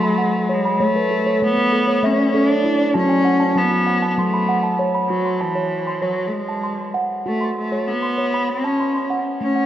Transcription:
0.00 0.63 F#3 medium
0.00 0.55 A3 medium
0.00 0.49 B5 medium
0.00 0.34 C6 medium
0.18 0.49 F#5 medium
0.49 0.79 C#5 medium
0.53 0.84 G#3 medium
0.65 0.96 B5 medium
0.80 1.30 A3 medium
0.80 1.45 A3 medium
0.80 1.25 C#5 medium
0.96 1.42 B4 medium
1.11 1.57 A4 medium
1.26 1.40 C#5 medium
1.41 1.56 A3 medium
1.41 2.06 B3 loud
1.41 1.86 C#5 medium
1.57 1.88 A3 medium
1.72 2.18 A4 medium
1.87 2.18 C#5 medium
2.03 2.78 A3 medium
2.03 2.37 C#4 medium
2.03 2.49 E5 medium
2.18 2.64 D5 medium
2.34 2.96 D4 medium
2.34 2.64 A4 medium
2.49 2.95 C#5 medium
2.64 2.95 E4 medium
2.79 3.10 D5 medium
2.94 3.45 F#3 medium
2.94 3.59 C#4 loud
2.94 3.25 F#4 medium
2.94 3.39 A5 medium
3.09 3.56 G#5 medium
3.25 3.71 F#5 medium
3.40 3.55 A5 medium
3.55 4.06 F#3 medium
3.55 4.10 B3 medium
3.55 4.01 A5 medium
3.71 4.02 F#4 medium
3.86 4.33 F#5 medium
4.02 4.33 A5 medium
4.10 4.21 B3 soft
4.18 4.93 F#3 medium
4.18 4.88 A3 medium
4.18 4.64 C6 medium
4.33 4.79 B5 medium
4.49 4.79 F#5 medium
4.63 5.10 A5 medium
4.79 5.10 C#5 medium
4.95 5.25 B5 medium
5.09 5.42 F#3 medium
5.09 5.41 F#4 medium
5.25 5.72 C6 soft
5.40 6.04 E3 medium
5.40 5.87 A5 soft
5.55 5.87 C#5 medium
5.87 6.33 C6 soft
6.02 6.29 F#3 medium
6.02 6.33 C#5 medium
6.27 6.34 A3 soft
6.33 6.95 G#3 medium
6.49 6.79 A5 soft
6.64 7.10 C6 soft
6.94 7.25 F#5 medium
7.26 7.55 A3 medium
7.26 7.57 F#4 medium
7.41 7.87 C6 soft
7.58 7.89 A3 medium
7.72 8.03 C#5 medium
7.87 8.51 B3 medium
8.02 8.49 C6 soft
8.18 8.49 C#5 medium
8.34 8.80 B5 soft
8.49 9.18 C#4 medium
8.64 8.95 A5 medium
8.80 8.94 C6 medium
8.95 9.41 C6 soft
9.10 9.41 F#5 medium
9.41 9.66 A3 medium
9.41 9.66 C#4 medium
9.56 9.66 F#5 soft

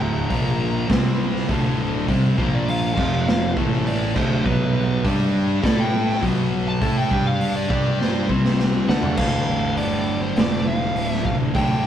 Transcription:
0.00 0.27 D1 loud
0.00 0.30 D2 medium
0.00 0.30 A2 loud
0.00 0.30 D3 loud
0.00 0.88 A#5 loud
0.30 0.86 A#1 medium
0.30 0.89 A#2 loud
0.30 0.89 F3 medium
0.30 0.90 A#3 loud
0.30 kick loud
0.30 open hi-hat medium
0.89 1.45 C2 loud
0.89 1.48 C3 medium
0.89 1.48 G3 medium
0.89 1.48 C4 loud
0.89 kick loud
0.89 snare loud
0.89 open hi-hat medium
1.36 snare soft
1.48 2.04 D1 loud
1.48 2.07 D2 medium
1.48 2.07 A2 loud
1.48 2.08 D3 loud
1.48 kick loud
1.48 open hi-hat medium
2.08 2.36 C2 loud
2.08 2.37 C3 loud
2.08 2.37 G3 medium
2.08 2.38 C4 loud
2.08 kick loud
2.08 open hi-hat medium
2.38 2.93 A#1 loud
2.38 2.97 A#2 medium
2.38 2.97 F3 medium
2.38 2.97 A#3 loud
2.38 2.53 C5 loud
2.38 kick loud
2.54 2.68 D5 loud
2.68 3.55 F5 loud
2.68 open hi-hat medium
2.97 3.52 F1 medium
2.97 3.56 F2 medium
2.97 3.56 C3 loud
2.97 3.56 F3 medium
2.97 kick loud
2.97 crash loud
3.29 snare loud
3.57 4.12 A1 loud
3.57 4.15 A2 loud
3.57 4.15 E3 medium
3.57 4.15 A3 loud
3.57 kick loud
3.73 snare soft
3.87 4.15 D5 medium
3.87 open hi-hat medium
4.16 4.43 D1 loud
4.16 4.44 D2 medium
4.16 4.44 A2 loud
4.16 4.45 D3 loud
4.16 4.45 C5 medium
4.16 kick loud
4.16 crash medium
4.45 5.01 B1 loud
4.45 5.03 B2 medium
4.45 5.04 F#3 loud
4.45 5.03 B3 loud
4.45 5.03 B4 loud
4.45 kick loud
5.04 5.60 G2 loud
5.04 5.62 G3 loud
5.04 5.63 D4 loud
5.04 5.63 G4 loud
5.04 kick loud
5.04 open hi-hat medium
5.63 6.19 A2 loud
5.63 6.22 A3 medium
5.63 6.22 E4 medium
5.63 6.22 A4 loud
5.63 5.78 D5 loud
5.63 kick loud
5.63 snare loud
5.63 open hi-hat medium
5.80 6.22 G5 loud
6.09 snare soft
6.23 6.78 B1 loud
6.23 6.81 B2 medium
6.23 6.81 F#3 loud
6.23 6.81 B3 loud
6.23 kick loud
6.23 open hi-hat medium
6.68 6.96 A5 loud
6.81 7.09 A2 loud
6.81 7.10 A3 loud
6.81 7.11 E4 medium
6.81 7.11 A4 loud
6.81 kick loud
6.81 open hi-hat medium
6.98 7.26 G5 medium
7.10 7.66 G2 loud
7.10 7.69 G3 medium
7.10 7.69 D4 medium
7.10 7.70 G4 loud
7.10 kick loud
7.27 7.55 F5 loud
7.41 open hi-hat medium
7.56 7.99 D5 loud
7.70 8.26 G2 medium
7.70 8.28 G3 medium
7.70 8.29 D4 medium
7.70 8.29 G4 loud
7.70 kick loud
8.00 8.29 C5 loud
8.00 snare medium
8.29 8.84 C2 medium
8.29 8.87 C3 loud
8.29 8.88 G3 loud
8.29 8.88 C4 loud
8.29 kick medium
8.45 snare medium
8.60 snare medium
8.88 9.16 D2 loud
8.88 9.17 D3 medium
8.88 9.17 A3 medium
8.88 9.17 D4 loud
8.88 9.16 F#5 loud
8.88 snare loud
9.03 floor tom loud
9.17 9.45 D1 medium
9.17 10.35 D2 medium
9.17 10.35 A2 medium
9.17 10.37 D3 medium
9.17 9.73 F5 loud
9.17 kick loud
9.17 crash loud
9.47 9.75 A1 medium
9.76 10.32 G1 loud
9.76 10.22 D5 medium
9.76 open hi-hat medium
10.22 10.37 C5 medium
10.35 10.91 F1 loud
10.35 11.52 D2 medium
10.35 11.53 A2 medium
10.35 11.53 D3 medium
10.35 10.67 D5 medium
10.35 snare loud
10.35 open hi-hat medium
10.67 11.10 F5 loud
10.95 11.50 D1 loud
10.95 open hi-hat medium
11.10 11.25 E5 loud
11.10 snare soft
11.25 11.34 F5 medium
11.25 kick medium
11.54 11.82 D1 loud
11.54 11.87 D2 medium
11.54 11.87 A2 medium
11.54 11.87 D3 loud
11.54 11.87 G5 loud
11.54 kick loud
11.54 open hi-hat medium
11.84 11.87 A1 medium

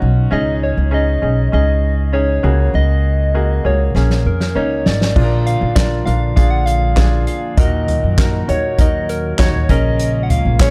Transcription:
0.00 0.30 B1 medium
0.00 0.31 C#4 medium
0.00 0.31 D#4 medium
0.00 0.33 F4 medium
0.00 0.33 F#4 medium
0.31 0.74 C#2 medium
0.31 1.18 G#2 medium
0.31 0.84 C#4 medium
0.31 0.85 D#4 medium
0.31 0.85 G#4 medium
0.31 0.65 D#5 loud
0.63 0.96 C#5 medium
0.77 1.19 C#2 medium
0.91 1.18 C#4 medium
0.91 1.18 D#4 medium
0.91 1.19 G#4 medium
0.91 1.53 D#5 loud
1.22 1.51 B1 medium
1.22 1.49 C#4 medium
1.22 1.49 D#4 medium
1.22 1.49 G#4 medium
1.52 2.40 C#2 medium
1.52 2.06 C#4 medium
1.52 2.06 D#4 soft
1.52 2.06 G#4 medium
1.52 2.10 D#5 loud
2.13 2.43 C#4 medium
2.13 2.43 D#4 medium
2.13 2.42 G#4 medium
2.13 2.76 C#5 loud
2.43 2.72 C#2 medium
2.43 3.30 C#3 medium
2.43 3.23 A#3 medium
2.43 3.23 F#4 medium
2.43 3.23 G#4 medium
2.74 3.61 C#2 medium
2.74 3.68 D#5 loud
3.34 3.61 A#3 medium
3.34 3.61 F#4 medium
3.34 3.61 G#4 medium
3.64 3.93 C#2 medium
3.64 3.91 A#3 medium
3.64 3.91 F#4 soft
3.64 3.91 G#4 medium
3.64 4.26 C#5 medium
3.95 4.23 A#1 medium
3.95 4.48 A#3 medium
3.95 4.48 C#4 medium
3.95 4.48 G#4 medium
3.95 snare medium
4.10 snare soft
4.25 4.53 F2 medium
4.25 4.58 A#4 medium
4.41 snare medium
4.55 4.84 C#2 medium
4.55 5.08 A#3 medium
4.55 5.09 C#4 medium
4.55 5.09 D#4 medium
4.55 4.88 C#5 medium
4.86 5.14 G#1 medium
4.86 5.48 D5 medium
4.86 snare medium
5.01 snare medium
5.14 5.58 A#1 medium
5.14 6.03 A#2 soft
5.14 7.55 D3 medium
5.14 7.55 F3 medium
5.14 6.03 F3 medium
5.14 9.65 A#3 medium
5.14 5.69 D4 medium
5.14 7.55 F4 medium
5.14 5.69 F4 medium
5.14 5.23 G#4 medium
5.14 kick loud
5.14 crash medium
5.23 5.73 A#4 medium
5.46 5.77 F5 loud
5.46 closed hi-hat medium
5.61 6.03 A#1 medium
5.75 6.02 D4 medium
5.75 6.03 F4 medium
5.75 6.03 A#4 medium
5.75 6.05 D5 loud
5.75 kick loud
5.75 snare loud
5.75 clap medium
5.75 closed hi-hat medium
6.06 6.35 A#1 medium
6.06 6.33 D4 medium
6.06 6.33 F4 soft
6.06 6.33 A#4 medium
6.06 6.34 F5 loud
6.06 closed hi-hat medium
6.36 7.24 A#1 medium
6.36 6.90 D4 medium
6.36 6.90 F4 medium
6.36 6.90 G#4 medium
6.36 6.52 F5 loud
6.36 kick medium
6.36 closed hi-hat medium
6.50 6.67 F#5 medium
6.66 7.27 F5 loud
6.66 closed hi-hat medium
6.96 7.50 D4 medium
6.96 7.50 F4 medium
6.96 7.51 G#4 medium
6.96 kick medium
6.96 snare medium
6.96 clap medium
6.96 closed hi-hat medium
7.27 7.41 F5 medium
7.27 closed hi-hat medium
7.57 8.00 D#2 medium
7.57 8.44 A#2 medium
7.57 9.68 D#3 medium
7.57 9.68 F#3 medium
7.57 8.11 D#4 medium
7.57 8.11 F#4 medium
7.57 9.68 F#4 medium
7.57 8.11 A#4 medium
7.57 8.51 D#5 loud
7.57 kick loud
7.57 closed hi-hat loud
7.88 closed hi-hat medium
7.88 floor tom medium
8.04 8.45 F#2 medium
8.18 8.45 D#4 medium
8.18 8.45 F#4 medium
8.18 8.45 A#4 medium
8.18 kick loud
8.18 snare medium
8.18 clap medium
8.18 closed hi-hat medium
8.48 8.77 D#2 medium
8.48 8.75 D#4 medium
8.48 8.75 F#4 medium
8.48 8.75 C#5 medium
8.48 8.82 C#5 medium
8.48 closed hi-hat medium
8.78 9.35 D#2 medium
8.78 9.32 D#4 medium
8.78 9.32 F#4 medium
8.78 9.32 A#4 medium
8.78 9.09 D#5 loud
8.78 kick loud
8.78 closed hi-hat medium
9.09 9.40 A#4 medium
9.09 closed hi-hat medium
9.38 9.67 D#2 medium
9.38 9.69 D#4 medium
9.38 9.69 F#4 medium
9.38 9.72 C#5 loud
9.38 9.69 C#5 medium
9.38 kick medium
9.38 snare medium
9.38 clap medium
9.38 closed hi-hat medium
9.54 floor tom soft
9.69 10.41 A#1 medium
9.69 10.70 C#3 medium
9.69 10.70 G#3 medium
9.69 10.70 A#3 medium
9.69 10.49 C#4 medium
9.69 10.70 F4 medium
9.69 10.49 G#4 medium
9.69 10.50 A#4 medium
9.69 10.25 D#5 loud
9.69 kick medium
9.69 closed hi-hat medium
9.69 floor tom medium
9.99 closed hi-hat loud
10.23 10.32 F#5 medium
10.30 10.63 F5 loud
10.30 closed hi-hat medium
10.30 floor tom medium
10.45 10.70 A#1 medium
10.60 10.70 C#4 medium
10.60 10.70 G#4 medium
10.60 10.70 C#5 medium
10.60 kick loud
10.60 snare medium
10.60 clap medium
10.60 closed hi-hat medium

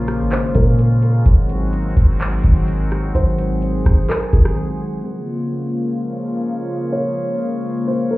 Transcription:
0.00 0.21 A#1 loud
0.00 1.22 C#3 medium
0.00 1.22 F3 medium
0.00 5.00 G#3 medium
0.00 1.22 A#3 medium
0.00 1.22 F4 medium
0.00 1.22 G#4 medium
0.00 0.27 C#5 medium
0.00 1.22 C#5 medium
0.08 cross-stick medium
0.08 closed hi-hat medium
0.20 0.53 G#1 loud
0.31 0.54 C5 medium
0.31 clap loud
0.31 closed hi-hat medium
0.55 1.23 A#2 loud
0.55 0.77 A#4 medium
0.55 kick loud
0.55 closed hi-hat medium
0.79 closed hi-hat medium
1.02 closed hi-hat medium
1.26 1.94 G#1 loud
1.26 5.00 D#3 medium
1.26 5.00 F#3 medium
1.26 5.00 G#3 medium
1.26 5.00 C4 medium
1.26 5.00 F#4 medium
1.26 3.13 F#4 medium
1.26 5.00 C5 medium
1.26 kick loud
1.26 closed hi-hat medium
1.49 closed hi-hat medium
1.73 closed hi-hat medium
1.97 2.42 G#1 loud
1.97 kick medium
1.97 closed hi-hat medium
2.20 clap loud
2.20 closed hi-hat medium
2.44 3.12 G#1 loud
2.44 kick loud
2.44 closed hi-hat medium
2.68 closed hi-hat medium
2.91 cross-stick medium
2.91 closed hi-hat medium
3.15 3.83 G#1 loud
3.15 5.02 G#4 medium
3.15 4.05 C5 loud
3.15 closed hi-hat medium
3.39 closed hi-hat medium
3.62 closed hi-hat medium
3.86 4.08 G#1 loud
3.86 kick medium
3.86 cross-stick medium
3.86 closed hi-hat medium
4.09 4.32 A#4 medium
4.09 clap loud
4.09 closed hi-hat medium
4.33 4.56 G#1 loud
4.33 5.00 G#4 medium
4.33 kick loud
4.33 closed hi-hat medium
4.45 cross-stick loud
5.04 8.18 C#3 medium
5.04 8.18 F3 medium
5.04 8.18 G#3 medium
5.04 8.18 A#3 medium
5.04 8.18 F4 medium
5.04 8.18 G#4 medium
5.04 8.18 C#5 medium
6.93 7.83 C#5 medium
7.88 8.10 C5 medium
8.11 8.18 A#4 medium

